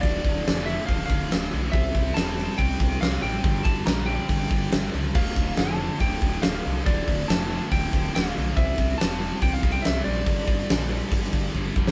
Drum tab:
CC |----------------|----------------|----------------|x---------------|
HH |o-o-o-o-o-o-o-o-|o-o-o-o-o-o-o-o-|o-o-o-o-o-o-o-o-|--o-o-o-o-o-o-o-|
SD |----o-------o---|----o-------o---|----o-------o---|----o-------o---|
BD |o-o-----o-o-----|o-o-----o-o-----|o-o-----o-o-----|o-o-----o-o-----|

CC |----------------|----------------|----------------|
HH |o-o-o-o-o-o-o-o-|o-o-o-o-o-o-o-o-|o-o-o-o-o-o-----|
SD |----o-------o---|----o-------o---|----o----------o|
BD |o-o-----o-o-----|o-o-----o-o-----|o-o-----o-o-o-o-|